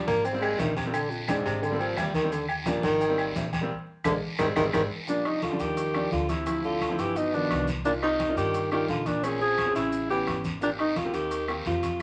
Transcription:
Already playing: F3 G3 D4
0.07 G#1 A#3, high conga, low agogo, short guiro, maracas
0.25 C4, high conga, low agogo, long guiro, maracas
0.33 G3 A#3 C4
0.42 G#3, high conga, low agogo, claves, maracas
0.59 A#1 D#3, high conga, low timbale, short guiro, maracas
0.77 C3, high conga, low agogo, short guiro, maracas
0.85 G3 A#3 C4
0.94 D3, high conga, low agogo, long guiro, claves, maracas
1.10 F2, high conga, maracas
1.28 G#2 G#3 C4 D4, high conga, low timbale, low agogo, short guiro, claves, maracas
1.45 G#1 C3, high conga, low agogo, short guiro, maracas
1.63 D3, high conga, low agogo, long guiro, maracas
1.71 G3 A#3 C4
1.80 F3, high conga, low agogo, maracas
1.97 D#2 G3, high conga, low timbale, low agogo, short guiro, claves, maracas
2.14 D#3, high conga, short guiro, maracas
2.22 G3 A#3 C4
2.32 D3, high conga, low agogo, long guiro, maracas
2.49 F2, high conga, low agogo, claves, maracas
2.66 A#2 F3 G3 D4, high conga, low timbale, short guiro, maracas
2.83 G#1 D#3, high conga, low agogo, short guiro, maracas
3.01 high conga, low agogo, long guiro, maracas
3.08 G3 A#3 C4
3.18 high conga, low agogo, claves, maracas
3.35 A#1, high conga, low timbale, short guiro, maracas
3.53 high conga, low agogo, short guiro, maracas
3.61 G3 A#3 C4
4.04 A#1 D3 G#3 A#3 D4, high conga, high timbale, long guiro, claves, maracas
4.39 G#1 D#3 G3 G#3 C4, high conga, high timbale, long guiro, claves, maracas
4.56 G#1 D#3 G3 G#3 C4, high conga, high timbale, long guiro, claves, maracas
4.73 G#1 D#3 G3 G#3 C4, high conga, high timbale, long guiro, claves, maracas
5.07 A#2 F3 G3 D4, high conga, long guiro, maracas
5.25 C3 D#4, high conga, high timbale, claves, maracas
5.42 D3 F4, high conga, high timbale, short guiro, maracas
5.51 F3 G3 D4
5.60 D#2 D#3 G4, high conga, short guiro, maracas
5.77 high conga, high timbale, long guiro, maracas
5.94 F3 G3 D4, high conga, high timbale, claves, maracas
6.11 D2 D3 F4, high conga, short guiro, maracas
6.29 C3 E4, high conga, high timbale, short guiro, maracas
6.46 F3 C4 E4, high conga, high timbale, long guiro, claves, maracas
6.64 D3 F4, high conga, maracas
6.81 high conga, high timbale, short guiro, claves, maracas
6.89 F3 C4 E4
6.98 G1 E3 G4, high conga, high timbale, short guiro, maracas
7.16 B2 D#4, high conga, long guiro, maracas
7.33 B2 D#3 F3 B3 D4, high conga, maracas
7.50 C2, high conga, high timbale, low timbale, short guiro, claves, maracas
7.67 high conga, short guiro, maracas
7.84 A#2 A#3 D4 D#4 F4, long guiro, maracas
8.02 C3 D#4, high conga, high timbale, claves, maracas
8.20 high conga, high timbale, short guiro, maracas
8.28 A#3 D4 D#4 F4
8.37 G2 D#3 G4, high conga, short guiro, maracas
8.54 high conga, high timbale, long guiro, maracas
8.71 D#3 A#3 D4 D#4 F4 G4, high conga, high timbale, claves, maracas
8.88 A#1 D3 F4, high conga, low timbale, short guiro, maracas
9.06 A#2 D4, high conga, high timbale, short guiro, maracas
9.23 A#2 C4 C#4 G#4, high conga, high timbale, long guiro, claves, maracas
9.41 F3 G#4, high conga, maracas
9.58 high conga, high timbale, short guiro, claves, maracas
9.66 C4 C#4 G#4
9.75 A1 C#3 E4, high conga, high timbale, short guiro, maracas
9.92 high conga, long guiro, maracas
10.09 E3 B3 C#4 G4, high conga, maracas
10.27 G#1, high conga, high timbale, low timbale, short guiro, claves, maracas
10.44 high conga, short guiro, maracas
10.61 A#2 A#3 C4 D4 G4, high conga, long guiro, maracas
10.79 C3 D#4, high conga, high timbale, claves, maracas
10.96 C3 F4, high conga, high timbale, short guiro, maracas
11.04 A#3 C4 G4
11.14 D#2 D#3 G4, high conga, short guiro, maracas
11.31 high conga, high timbale, long guiro, maracas
11.48 A#3 C4 G4, high conga, high timbale, claves, maracas
11.66 F2 C3 F4, high conga, short guiro, maracas
11.83 high conga, high timbale, short guiro, maracas

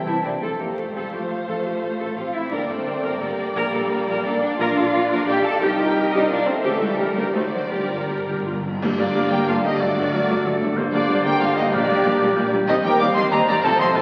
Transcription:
Already playing: E3 C4 E5
0.04 C2 C3 C4 E4 G4 C5 E5 A5
0.23 C2 C3 A#3 C4 D4 E4 G4 C5 D5 G5
0.42 F1 F2 A3 C4 A4 C5 F5
0.59 F1 F2 G3 A#3 G4 A#4
0.76 F1 F2 F3 A3 A4
0.94 F1 F2 E3 G3 G4 A4
1.12 F1 F2 F3 A3 G4 A4
1.47 A1 F3 A3 A4
1.65 A1 G4
1.82 A1 A4
1.99 A1 A4
2.16 A1 C4 F4 G4 F5
2.33 C4 E4 E5
2.52 G1 G2 A#3 D4 A#4 D5 G5
2.68 G1 A3 C4 A4 C5
2.86 G1 A#4
3.03 G1 A#4
3.20 G1 G3 A#3 A4 A#4
3.55 A#1 G3 A#3 A#4
3.73 A#1 A4
3.90 A#1 A#4
4.08 A#1 A#4
4.25 A#1 A#3 D4 A4 D5
4.42 A#3 D4 D5
4.59 A#1 D4 F4 A#4 D5 F5
4.76 A#1 A4
4.93 A#1 A#4
5.10 A#1 A#4
5.27 A#1 D#4 G4 A4 G5
5.44 F4 A4 A5
5.61 C2 D#4 G4 A#4 D#5 G5
5.79 C2 F4
5.95 C2 G4
6.12 C2 C4 D#4 G4 D#5
6.30 C2 A#3 D4 F4 D5
6.46 A3 C4 C5
6.63 C#2 E3 A3 G4 A4 E5
6.81 C#2 E3 G3 F#4 G4
6.98 D2 G4 A#4 D5
7.15 D2 G3 A#3 G4 A#4
7.33 D2 F#3 A3 D#4 A4 C5
7.51 D3 F#3 F#4
7.70 G1 G2 D3 G3 G4 A#4
7.79 G2
7.87 G1 G2 F4
7.94 G2
8.03 G2
8.08 G1 G2 G4
8.19 G2
8.27 G1 G2 G4
8.34 G2
8.42 G1 G2 F4
8.46 G1
8.51 G2
8.59 G2
8.66 G2
8.74 G2
8.81 G1 G2 D3 G3 A#3 D4 G4, concert bass drum, crash
8.98 G1 G2 G3 A#3 D4 F4 D5
9.15 G1 G2 G3 A#3 A#4
9.31 G1 G2 G3 A#3 G4 A#4 G5
9.47 G1 G2 G3 A#3 F4 A4 D5 F5
9.64 G1 G2 G3 A#3 D#4 G4 D#5
9.80 G1 G2 F#3 A3 D4 F#4 A4 D5
9.97 G1 G2 F#3 A3
10.12 G1 G2 F#3 A3 A#4
10.29 G1 G2 F#3 A3
10.44 G1 G2 F#3 A3 A4
10.61 G1 G2 F#3 A3
10.77 G1 G2 D3 G3 A#3 D4 G4 C5
10.93 G1 G2 G3 A#3 D4 F4 D5
11.09 G1 G2 G3 A#3
11.25 G1 G2 G3 A#3 G4 A#4 G5
11.41 G1 G2 G3 A#3 F4 A4 F5
11.56 G1 G2 G3 A#3 D#4 G4 D#5
11.72 A#1 A#2 G3 A#3 D4 G4 A#4 D5
11.88 A#1 A#2 G3 A#3
12.04 A#1 A#2 G3 A#3
12.20 A#1 A#2 G3 A#3
12.36 A#1 A#2 G3 A#3 G4
12.52 A#1 A#2 G3 A#3
12.67 D#2 G3 A#3 C4 D#4 G4 D#5
12.83 D#2 G3 C4 G4 A#4 G5
12.99 D#2 G3 C4 D5 F5 D6
13.15 D#2 G3 C4 C5 D#5 C6
13.31 D#2 G3 C4 A#4 D#5 A#5
13.47 D#2 G3 C4 A#4 D5 A#5
13.63 F1 F2 F3 A3 C4 A4 C5 A5
13.78 F1 F2 F3 C4 C5 D#5 C6
13.95 F1 F2 F3 C4 A4 C5 A5

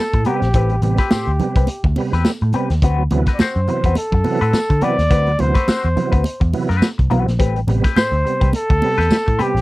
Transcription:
Already playing: A4
0.13 A2, muted clean electric guitar stroke, kick, closed hi-hat
0.25 C3 G3 B3 C4 G4 B4, closed hi-hat, high conga
0.42 A#1, muted clean electric guitar stroke, snare, closed hi-hat
0.54 A1 A2 C4 G4 B4, kick, closed hi-hat
0.69 G3 B3, closed hi-hat
0.82 A1 C3 G3 B3 G4, muted clean electric guitar stroke, closed hi-hat, muted conga
0.97 C4 G4 B4, kick, snare, closed hi-hat
1.11 A2 C4 G4 C5, muted picked electric bass stroke, snare, tambourine, high conga
1.26 D2, closed hi-hat
1.40 C3 G3 B3, muted clean electric guitar stroke, closed hi-hat, muted conga, low conga
1.56 C2 G3 B3 C4 G4 B4, kick, closed hi-hat
1.67 closed hi-hat, muted conga
1.84 D2, muted clean electric guitar stroke, kick
1.96 C3 G3 B3, open hi-hat, muted conga
2.12 E2 C4 G4 B4, snare, closed hi-hat
2.25 G3 B3, snare, tambourine, high conga
2.41 A2, muted clean electric guitar stroke, closed hi-hat
2.53 C3 G3 B3 C4 G4 B4, closed hi-hat, high conga
2.70 D#2, muted clean electric guitar stroke, snare, closed hi-hat
2.82 D2 C4 F#4 B4, kick, closed hi-hat
2.98 F#3 B3
3.11 D2 C3 E3 F#3 B3, muted clean electric guitar stroke, closed hi-hat, muted conga
3.26 C4 F#4 B4, kick, snare, closed hi-hat
3.34 D5
3.39 C4 F#4 C5, muted picked electric bass stroke, snare, tambourine, high conga
3.55 F#2, closed hi-hat
3.67 C3 E3 F#3 B3, muted clean electric guitar stroke, closed hi-hat, muted conga
3.84 E2 F#3 B3 C4 F#4 B4, kick, closed hi-hat
3.95 A4, closed hi-hat, muted conga
4.12 F#2, muted clean electric guitar stroke, kick
4.24 C3 E3 F#3 B3, open hi-hat, muted conga
4.41 A2 C4 F#4 B4, closed hi-hat
4.53 F#3 B3, snare, tambourine, high conga
4.70 D3, muted clean electric guitar stroke, kick, closed hi-hat
4.81 C3 E3 F#3 B3 C4 F#4 B4 D5, closed hi-hat, high conga
4.99 D#2, muted clean electric guitar stroke, snare, closed hi-hat
5.10 D2 C4 F#4 B4, kick, closed hi-hat
5.27 F#3 B3, closed hi-hat
5.39 D2 C3 E3 F#3 B3 C5, muted clean electric guitar stroke, closed hi-hat, muted conga
5.54 C4 F#4 B4, kick, snare, closed hi-hat
5.68 C4 F#4 C5, muted picked electric bass stroke, snare, tambourine, high conga
5.83 E2, closed hi-hat
5.96 C3 E3 F#3 B3, muted clean electric guitar stroke, closed hi-hat, low conga
6.12 D2 F#3 B3 C4 F#4 B4, kick, closed hi-hat
6.24 muted clean electric guitar stroke, closed hi-hat, muted conga
6.40 E2, muted clean electric guitar stroke, kick, closed hi-hat
6.53 C3 E3 F#3 B3, open hi-hat, muted conga
6.69 F#2 C4 F#4 B4, snare, closed hi-hat
6.82 F#3 B3, snare, tambourine, high conga
6.98 C2, muted clean electric guitar stroke, kick, closed hi-hat
7.10 B1 C3 E3 F#3 B3 C4 F#4 B4, closed hi-hat, high conga
7.26 A#1, muted clean electric guitar stroke, snare, closed hi-hat
7.39 A1 A2 C4 G4 B4, kick, closed hi-hat
7.56 G3 B3, closed hi-hat
7.68 A1 C3 G3 B3, muted clean electric guitar stroke, closed hi-hat, muted conga
7.84 C4 G4 B4, kick, snare, closed hi-hat
7.96 A2 C4 G4 C5, muted picked electric bass stroke, snare, tambourine, high conga
8.12 D2, closed hi-hat
8.24 C3 G3 B3, muted clean electric guitar stroke, closed hi-hat
8.40 C2 G3 B3 C4 G4 B4, kick, closed hi-hat
8.53 A4, closed hi-hat, muted conga
8.70 D2, muted clean electric guitar stroke, kick, closed hi-hat
8.82 C3 G3 B3, open hi-hat, muted conga
8.98 E2 C4 G4 B4, snare, closed hi-hat
9.11 G3 B3, snare, tambourine, high conga
9.26 A2, muted clean electric guitar stroke, kick, closed hi-hat
9.39 C3 G3 B3 C4 G4 B4, closed hi-hat, high conga
9.55 A#1, muted clean electric guitar stroke, snare, closed hi-hat

